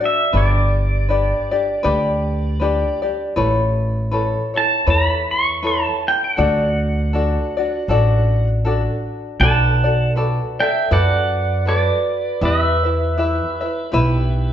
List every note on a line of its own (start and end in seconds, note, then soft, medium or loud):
0.00 0.32 D4 soft
0.00 0.33 F#4 soft
0.00 0.33 D5 soft
0.05 0.37 E5 medium
0.33 1.32 G1 medium
0.33 1.08 D4 medium
0.33 1.08 G4 medium
0.33 1.08 B4 medium
0.33 1.09 D5 medium
0.37 3.00 D5 medium
1.08 1.52 D4 soft
1.08 1.50 G4 medium
1.08 1.51 B4 medium
1.08 1.50 D5 medium
1.51 1.83 D4 soft
1.51 1.83 G4 soft
1.51 1.83 D5 medium
1.83 2.83 D2 medium
1.83 2.60 D4 medium
1.83 2.60 G4 medium
1.83 2.59 B4 medium
1.83 2.60 D5 medium
2.60 3.03 D4 medium
2.60 3.02 G4 medium
2.60 3.02 B4 medium
2.60 3.01 D5 medium
3.02 3.36 D4 soft
3.02 3.36 G4 soft
3.02 3.35 D5 soft
3.36 4.34 A1 medium
3.36 4.10 E4 medium
3.36 4.12 A4 medium
3.36 4.10 B4 medium
3.36 4.12 C#5 medium
4.11 4.54 E4 medium
4.11 4.54 A4 medium
4.11 4.53 B4 medium
4.11 4.53 C#5 medium
4.54 4.86 E4 soft
4.54 4.87 A4 soft
4.54 4.86 C#5 medium
4.54 4.89 A5 medium
4.86 5.85 E2 medium
4.86 5.61 E4 medium
4.86 5.63 A4 medium
4.86 5.61 B4 medium
4.86 5.62 C#5 medium
4.86 5.31 B5 medium
5.31 5.64 C#6 medium
5.63 6.37 E4 medium
5.63 6.37 A4 medium
5.63 6.37 B4 medium
5.63 6.38 C#5 medium
5.67 6.08 A5 medium
6.08 6.23 G5 medium
6.24 8.49 F#5 medium
6.37 7.36 D2 medium
6.37 7.14 D4 medium
6.37 7.14 F#4 medium
6.37 7.13 A4 medium
6.37 7.15 D5 medium
7.13 7.56 D4 medium
7.13 7.56 F#4 medium
7.13 7.56 A4 medium
7.13 7.56 D5 medium
7.57 7.89 D4 soft
7.57 7.89 F#4 medium
7.57 7.89 D5 medium
7.88 8.87 A1 medium
7.88 8.66 D4 medium
7.88 8.65 F#4 medium
7.88 8.65 A4 medium
7.88 8.64 D5 medium
8.65 9.41 D4 medium
8.65 9.41 F#4 medium
8.65 9.42 A4 medium
8.65 9.42 D5 medium
9.40 10.38 B1 loud
9.40 9.83 F#4 medium
9.40 9.83 A4 medium
9.40 9.83 B4 medium
9.40 9.83 D5 medium
9.40 10.12 F#5 medium
9.40 10.12 A5 medium
9.84 10.15 F#4 soft
9.84 10.15 A4 soft
9.84 10.16 D5 soft
10.16 10.58 F#4 medium
10.16 10.59 A4 medium
10.16 10.58 B4 medium
10.16 10.58 D5 medium
10.59 10.90 A4 soft
10.59 10.91 D5 soft
10.59 10.91 E5 medium
10.59 10.93 G5 loud
10.91 11.89 F#2 medium
10.91 11.66 F#4 medium
10.91 11.66 A4 medium
10.91 11.65 B4 medium
10.91 11.67 D5 medium
10.91 11.63 D5 medium
10.91 11.70 F#5 medium
11.65 12.41 F#4 medium
11.65 12.42 A4 medium
11.65 12.42 B4 medium
11.65 12.39 B4 medium
11.65 12.41 D5 medium
11.65 12.45 D5 medium
12.41 13.40 E2 loud
12.41 12.84 E4 medium
12.41 12.84 G4 medium
12.41 12.84 B4 medium
12.41 12.82 E5 medium
12.41 14.53 E5 medium
12.45 14.53 B4 medium
12.84 13.16 E4 soft
12.84 13.17 B4 soft
12.84 13.17 E5 medium
13.18 13.60 E4 medium
13.18 13.60 G4 medium
13.18 13.60 B4 medium
13.18 13.59 E5 medium
13.61 13.91 E4 soft
13.61 13.92 B4 soft
13.61 13.93 E5 medium
13.92 14.53 B1 medium
13.92 14.53 E4 medium
13.92 14.53 G4 medium
13.92 14.53 B4 loud
13.92 14.53 E5 loud